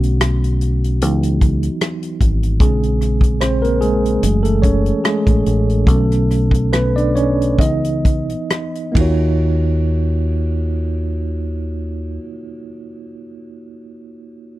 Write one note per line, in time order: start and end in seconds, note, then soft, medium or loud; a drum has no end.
0.00 1.02 B1 medium
0.00 0.97 D3 soft
0.00 1.38 F#3 medium
0.00 0.97 A3 soft
0.00 0.97 C#4 medium
0.00 1.36 F#4 medium
0.00 closed hi-hat soft
0.21 cross-stick loud
0.21 closed hi-hat medium
0.44 closed hi-hat soft
0.61 closed hi-hat medium
0.84 closed hi-hat soft
1.01 1.68 C#2 medium
1.01 2.57 E3 medium
1.01 2.57 B3 soft
1.01 2.57 D#4 medium
1.01 closed hi-hat medium
1.23 closed hi-hat soft
1.41 kick medium
1.41 closed hi-hat medium
1.63 closed hi-hat soft
1.81 cross-stick loud
1.81 closed hi-hat medium
2.03 closed hi-hat soft
2.21 2.61 G#1 medium
2.21 kick medium
2.21 closed hi-hat medium
2.43 closed hi-hat soft
2.60 4.18 A#1 medium
2.60 4.18 C#3 soft
2.60 3.38 G#3 soft
2.60 3.42 C4 medium
2.60 3.43 G#4 medium
2.60 kick loud
2.60 closed hi-hat medium
2.83 closed hi-hat soft
3.01 cross-stick soft
3.01 closed hi-hat medium
3.21 kick medium
3.21 closed hi-hat soft
3.41 3.62 C4 medium
3.41 3.63 C5 medium
3.41 cross-stick medium
3.41 closed hi-hat medium
3.62 3.81 A#3 medium
3.62 3.79 A#4 medium
3.62 closed hi-hat soft
3.81 4.22 G#3 medium
3.81 4.46 G#4 medium
3.81 closed hi-hat soft
4.05 closed hi-hat soft
4.22 4.91 F#1 medium
4.22 5.41 E3 soft
4.22 5.05 G#3 soft
4.22 4.44 A3 medium
4.22 closed hi-hat medium
4.43 4.62 A3 medium
4.43 4.62 A4 medium
4.43 closed hi-hat soft
4.62 5.02 C#4 medium
4.62 5.05 C#5 medium
4.62 kick medium
4.62 closed hi-hat medium
4.86 closed hi-hat soft
5.04 5.84 G#3 medium
5.04 5.83 G#4 medium
5.04 cross-stick loud
5.04 closed hi-hat medium
5.27 5.43 A1 medium
5.27 kick medium
5.27 closed hi-hat soft
5.46 5.88 A1 medium
5.46 closed hi-hat medium
5.70 closed hi-hat soft
5.87 7.59 B1 medium
5.87 7.12 D3 soft
5.87 6.69 A3 medium
5.87 7.12 C#4 soft
5.87 6.75 A4 medium
5.87 kick medium
5.87 closed hi-hat medium
6.12 cross-stick soft
6.12 closed hi-hat soft
6.31 cross-stick soft
6.31 closed hi-hat medium
6.51 kick medium
6.51 closed hi-hat soft
6.73 6.95 B3 medium
6.73 6.94 B4 medium
6.73 cross-stick medium
6.73 closed hi-hat medium
6.96 7.15 D4 medium
6.96 7.16 D5 medium
6.96 closed hi-hat soft
7.16 7.37 C#4 medium
7.16 7.35 C#5 medium
7.16 closed hi-hat soft
7.42 closed hi-hat soft
7.59 8.34 C#2 medium
7.59 8.21 E3 soft
7.59 8.21 B3 soft
7.59 8.92 D#4 medium
7.59 8.91 D#5 medium
7.59 kick medium
7.59 closed hi-hat medium
7.84 closed hi-hat soft
8.05 kick medium
8.05 closed hi-hat soft
8.30 closed hi-hat soft
8.50 cross-stick medium
8.50 closed hi-hat medium
8.75 closed hi-hat soft
8.92 12.18 D#2 medium
8.92 12.14 A#3 medium
8.92 12.16 D#4 medium
8.92 kick medium
8.96 12.18 F4 medium
8.96 12.20 F#4 medium
8.96 ride medium
9.01 12.23 C#5 medium